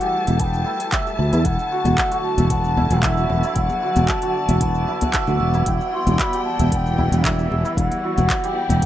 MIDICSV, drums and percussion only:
0, 0, Header, 1, 3, 480
1, 0, Start_track
1, 0, Key_signature, 1, "minor"
1, 0, Tempo, 526316
1, 1326, Time_signature, 4, 2, 24, 8
1, 8077, End_track
2, 0, Start_track
2, 0, Title_t, "Djembe"
2, 1687, Note_on_c, 9, 64, 103
2, 1778, Note_off_c, 9, 64, 0
2, 2169, Note_on_c, 9, 64, 88
2, 2260, Note_off_c, 9, 64, 0
2, 2409, Note_on_c, 9, 63, 36
2, 2501, Note_off_c, 9, 63, 0
2, 2529, Note_on_c, 9, 64, 97
2, 2621, Note_off_c, 9, 64, 0
2, 3005, Note_on_c, 9, 63, 60
2, 3006, Note_on_c, 9, 62, 37
2, 3096, Note_off_c, 9, 63, 0
2, 3098, Note_off_c, 9, 62, 0
2, 3370, Note_on_c, 9, 63, 59
2, 3461, Note_off_c, 9, 63, 0
2, 3614, Note_on_c, 9, 64, 92
2, 3705, Note_off_c, 9, 64, 0
2, 4094, Note_on_c, 9, 64, 81
2, 4185, Note_off_c, 9, 64, 0
2, 4449, Note_on_c, 9, 63, 34
2, 4541, Note_off_c, 9, 63, 0
2, 4579, Note_on_c, 9, 64, 103
2, 4670, Note_off_c, 9, 64, 0
2, 4808, Note_on_c, 9, 62, 55
2, 4899, Note_off_c, 9, 62, 0
2, 4922, Note_on_c, 9, 62, 34
2, 5013, Note_off_c, 9, 62, 0
2, 5050, Note_on_c, 9, 62, 51
2, 5057, Note_on_c, 9, 63, 54
2, 5141, Note_off_c, 9, 62, 0
2, 5148, Note_off_c, 9, 63, 0
2, 5536, Note_on_c, 9, 64, 91
2, 5627, Note_off_c, 9, 64, 0
2, 6014, Note_on_c, 9, 64, 79
2, 6105, Note_off_c, 9, 64, 0
2, 6253, Note_on_c, 9, 63, 35
2, 6344, Note_off_c, 9, 63, 0
2, 6368, Note_on_c, 9, 64, 93
2, 6460, Note_off_c, 9, 64, 0
2, 6847, Note_on_c, 9, 63, 61
2, 6856, Note_on_c, 9, 62, 39
2, 6938, Note_off_c, 9, 63, 0
2, 6947, Note_off_c, 9, 62, 0
2, 7217, Note_on_c, 9, 63, 69
2, 7308, Note_off_c, 9, 63, 0
2, 7462, Note_on_c, 9, 64, 98
2, 7464, Note_on_c, 9, 62, 40
2, 7553, Note_off_c, 9, 64, 0
2, 7555, Note_off_c, 9, 62, 0
2, 7929, Note_on_c, 9, 64, 96
2, 8020, Note_off_c, 9, 64, 0
2, 8077, End_track
3, 0, Start_track
3, 0, Title_t, "Drums"
3, 8, Note_on_c, 9, 42, 28
3, 9, Note_on_c, 9, 69, 34
3, 100, Note_off_c, 9, 42, 0
3, 100, Note_off_c, 9, 69, 0
3, 249, Note_on_c, 9, 42, 41
3, 250, Note_on_c, 9, 69, 67
3, 340, Note_off_c, 9, 42, 0
3, 341, Note_off_c, 9, 69, 0
3, 361, Note_on_c, 9, 42, 72
3, 361, Note_on_c, 9, 69, 64
3, 364, Note_on_c, 9, 36, 104
3, 452, Note_off_c, 9, 42, 0
3, 452, Note_off_c, 9, 69, 0
3, 455, Note_off_c, 9, 36, 0
3, 488, Note_on_c, 9, 69, 36
3, 579, Note_off_c, 9, 69, 0
3, 730, Note_on_c, 9, 42, 42
3, 731, Note_on_c, 9, 69, 72
3, 821, Note_off_c, 9, 42, 0
3, 822, Note_off_c, 9, 69, 0
3, 842, Note_on_c, 9, 39, 102
3, 842, Note_on_c, 9, 42, 64
3, 843, Note_on_c, 9, 69, 62
3, 844, Note_on_c, 9, 36, 119
3, 933, Note_off_c, 9, 39, 0
3, 933, Note_off_c, 9, 42, 0
3, 934, Note_off_c, 9, 69, 0
3, 935, Note_off_c, 9, 36, 0
3, 973, Note_on_c, 9, 69, 34
3, 1064, Note_off_c, 9, 69, 0
3, 1211, Note_on_c, 9, 42, 30
3, 1212, Note_on_c, 9, 69, 62
3, 1303, Note_off_c, 9, 42, 0
3, 1303, Note_off_c, 9, 69, 0
3, 1322, Note_on_c, 9, 42, 68
3, 1323, Note_on_c, 9, 69, 54
3, 1324, Note_on_c, 9, 36, 108
3, 1413, Note_off_c, 9, 42, 0
3, 1414, Note_off_c, 9, 69, 0
3, 1415, Note_off_c, 9, 36, 0
3, 1450, Note_on_c, 9, 69, 34
3, 1541, Note_off_c, 9, 69, 0
3, 1691, Note_on_c, 9, 42, 28
3, 1692, Note_on_c, 9, 69, 59
3, 1782, Note_off_c, 9, 42, 0
3, 1783, Note_off_c, 9, 69, 0
3, 1805, Note_on_c, 9, 36, 103
3, 1806, Note_on_c, 9, 39, 93
3, 1806, Note_on_c, 9, 42, 60
3, 1806, Note_on_c, 9, 69, 52
3, 1896, Note_off_c, 9, 36, 0
3, 1897, Note_off_c, 9, 39, 0
3, 1897, Note_off_c, 9, 42, 0
3, 1898, Note_off_c, 9, 69, 0
3, 1931, Note_on_c, 9, 42, 29
3, 1931, Note_on_c, 9, 69, 34
3, 2022, Note_off_c, 9, 42, 0
3, 2022, Note_off_c, 9, 69, 0
3, 2170, Note_on_c, 9, 42, 45
3, 2171, Note_on_c, 9, 69, 64
3, 2261, Note_off_c, 9, 42, 0
3, 2262, Note_off_c, 9, 69, 0
3, 2282, Note_on_c, 9, 42, 68
3, 2283, Note_on_c, 9, 69, 62
3, 2285, Note_on_c, 9, 36, 99
3, 2373, Note_off_c, 9, 42, 0
3, 2374, Note_off_c, 9, 69, 0
3, 2376, Note_off_c, 9, 36, 0
3, 2411, Note_on_c, 9, 69, 35
3, 2502, Note_off_c, 9, 69, 0
3, 2650, Note_on_c, 9, 42, 44
3, 2651, Note_on_c, 9, 69, 63
3, 2741, Note_off_c, 9, 42, 0
3, 2742, Note_off_c, 9, 69, 0
3, 2763, Note_on_c, 9, 39, 104
3, 2763, Note_on_c, 9, 42, 63
3, 2764, Note_on_c, 9, 69, 57
3, 2766, Note_on_c, 9, 36, 119
3, 2854, Note_off_c, 9, 39, 0
3, 2854, Note_off_c, 9, 42, 0
3, 2855, Note_off_c, 9, 69, 0
3, 2857, Note_off_c, 9, 36, 0
3, 2893, Note_on_c, 9, 69, 33
3, 2984, Note_off_c, 9, 69, 0
3, 3129, Note_on_c, 9, 69, 63
3, 3221, Note_off_c, 9, 69, 0
3, 3243, Note_on_c, 9, 42, 67
3, 3244, Note_on_c, 9, 69, 52
3, 3246, Note_on_c, 9, 36, 106
3, 3335, Note_off_c, 9, 42, 0
3, 3335, Note_off_c, 9, 69, 0
3, 3338, Note_off_c, 9, 36, 0
3, 3370, Note_on_c, 9, 69, 35
3, 3461, Note_off_c, 9, 69, 0
3, 3610, Note_on_c, 9, 42, 28
3, 3611, Note_on_c, 9, 69, 63
3, 3701, Note_off_c, 9, 42, 0
3, 3702, Note_off_c, 9, 69, 0
3, 3725, Note_on_c, 9, 39, 87
3, 3725, Note_on_c, 9, 42, 58
3, 3725, Note_on_c, 9, 69, 52
3, 3727, Note_on_c, 9, 36, 95
3, 3816, Note_off_c, 9, 39, 0
3, 3816, Note_off_c, 9, 42, 0
3, 3817, Note_off_c, 9, 69, 0
3, 3818, Note_off_c, 9, 36, 0
3, 3848, Note_on_c, 9, 42, 30
3, 3849, Note_on_c, 9, 69, 31
3, 3939, Note_off_c, 9, 42, 0
3, 3940, Note_off_c, 9, 69, 0
3, 4092, Note_on_c, 9, 42, 44
3, 4093, Note_on_c, 9, 69, 60
3, 4183, Note_off_c, 9, 42, 0
3, 4184, Note_off_c, 9, 69, 0
3, 4203, Note_on_c, 9, 42, 72
3, 4203, Note_on_c, 9, 69, 57
3, 4208, Note_on_c, 9, 36, 97
3, 4294, Note_off_c, 9, 42, 0
3, 4295, Note_off_c, 9, 69, 0
3, 4299, Note_off_c, 9, 36, 0
3, 4330, Note_on_c, 9, 69, 33
3, 4421, Note_off_c, 9, 69, 0
3, 4571, Note_on_c, 9, 42, 46
3, 4572, Note_on_c, 9, 69, 65
3, 4663, Note_off_c, 9, 42, 0
3, 4663, Note_off_c, 9, 69, 0
3, 4683, Note_on_c, 9, 39, 94
3, 4683, Note_on_c, 9, 42, 67
3, 4684, Note_on_c, 9, 69, 54
3, 4688, Note_on_c, 9, 36, 104
3, 4774, Note_off_c, 9, 39, 0
3, 4774, Note_off_c, 9, 42, 0
3, 4775, Note_off_c, 9, 69, 0
3, 4779, Note_off_c, 9, 36, 0
3, 4810, Note_on_c, 9, 69, 30
3, 4901, Note_off_c, 9, 69, 0
3, 5050, Note_on_c, 9, 69, 60
3, 5141, Note_off_c, 9, 69, 0
3, 5164, Note_on_c, 9, 42, 73
3, 5165, Note_on_c, 9, 69, 53
3, 5167, Note_on_c, 9, 36, 106
3, 5256, Note_off_c, 9, 42, 0
3, 5256, Note_off_c, 9, 69, 0
3, 5258, Note_off_c, 9, 36, 0
3, 5295, Note_on_c, 9, 69, 35
3, 5386, Note_off_c, 9, 69, 0
3, 5535, Note_on_c, 9, 42, 33
3, 5535, Note_on_c, 9, 69, 61
3, 5626, Note_off_c, 9, 42, 0
3, 5626, Note_off_c, 9, 69, 0
3, 5648, Note_on_c, 9, 36, 93
3, 5649, Note_on_c, 9, 39, 93
3, 5649, Note_on_c, 9, 42, 62
3, 5650, Note_on_c, 9, 69, 52
3, 5739, Note_off_c, 9, 36, 0
3, 5740, Note_off_c, 9, 39, 0
3, 5740, Note_off_c, 9, 42, 0
3, 5741, Note_off_c, 9, 69, 0
3, 5775, Note_on_c, 9, 42, 32
3, 5775, Note_on_c, 9, 69, 34
3, 5866, Note_off_c, 9, 42, 0
3, 5866, Note_off_c, 9, 69, 0
3, 6014, Note_on_c, 9, 42, 46
3, 6015, Note_on_c, 9, 69, 64
3, 6105, Note_off_c, 9, 42, 0
3, 6106, Note_off_c, 9, 69, 0
3, 6128, Note_on_c, 9, 36, 98
3, 6129, Note_on_c, 9, 42, 74
3, 6130, Note_on_c, 9, 69, 60
3, 6219, Note_off_c, 9, 36, 0
3, 6220, Note_off_c, 9, 42, 0
3, 6221, Note_off_c, 9, 69, 0
3, 6260, Note_on_c, 9, 69, 32
3, 6351, Note_off_c, 9, 69, 0
3, 6498, Note_on_c, 9, 42, 44
3, 6498, Note_on_c, 9, 69, 61
3, 6589, Note_off_c, 9, 42, 0
3, 6590, Note_off_c, 9, 69, 0
3, 6608, Note_on_c, 9, 36, 104
3, 6613, Note_on_c, 9, 39, 100
3, 6613, Note_on_c, 9, 42, 69
3, 6614, Note_on_c, 9, 69, 55
3, 6699, Note_off_c, 9, 36, 0
3, 6704, Note_off_c, 9, 39, 0
3, 6704, Note_off_c, 9, 42, 0
3, 6705, Note_off_c, 9, 69, 0
3, 6739, Note_on_c, 9, 69, 31
3, 6830, Note_off_c, 9, 69, 0
3, 6978, Note_on_c, 9, 69, 63
3, 7069, Note_off_c, 9, 69, 0
3, 7087, Note_on_c, 9, 36, 111
3, 7094, Note_on_c, 9, 42, 70
3, 7094, Note_on_c, 9, 69, 54
3, 7179, Note_off_c, 9, 36, 0
3, 7185, Note_off_c, 9, 42, 0
3, 7185, Note_off_c, 9, 69, 0
3, 7220, Note_on_c, 9, 42, 33
3, 7221, Note_on_c, 9, 69, 35
3, 7311, Note_off_c, 9, 42, 0
3, 7312, Note_off_c, 9, 69, 0
3, 7457, Note_on_c, 9, 42, 29
3, 7457, Note_on_c, 9, 69, 61
3, 7548, Note_off_c, 9, 42, 0
3, 7549, Note_off_c, 9, 69, 0
3, 7568, Note_on_c, 9, 36, 102
3, 7569, Note_on_c, 9, 39, 100
3, 7569, Note_on_c, 9, 42, 68
3, 7569, Note_on_c, 9, 69, 52
3, 7659, Note_off_c, 9, 36, 0
3, 7660, Note_off_c, 9, 39, 0
3, 7660, Note_off_c, 9, 42, 0
3, 7661, Note_off_c, 9, 69, 0
3, 7695, Note_on_c, 9, 42, 32
3, 7696, Note_on_c, 9, 69, 34
3, 7787, Note_off_c, 9, 42, 0
3, 7787, Note_off_c, 9, 69, 0
3, 7935, Note_on_c, 9, 42, 49
3, 7936, Note_on_c, 9, 69, 63
3, 8026, Note_off_c, 9, 42, 0
3, 8027, Note_off_c, 9, 69, 0
3, 8047, Note_on_c, 9, 36, 102
3, 8047, Note_on_c, 9, 42, 75
3, 8047, Note_on_c, 9, 69, 59
3, 8077, Note_off_c, 9, 36, 0
3, 8077, Note_off_c, 9, 42, 0
3, 8077, Note_off_c, 9, 69, 0
3, 8077, End_track
0, 0, End_of_file